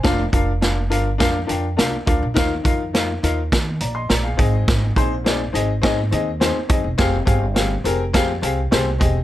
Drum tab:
HH |xxxxxxxx|xxxxxxxx|xxxxxxxx|xxxxxxxx|
SD |o-o-o-o-|o-o-o-o-|o-o-o-o-|o-o-o-o-|
BD |oo--o--o|oo--o--o|oo--o--o|oo--o--o|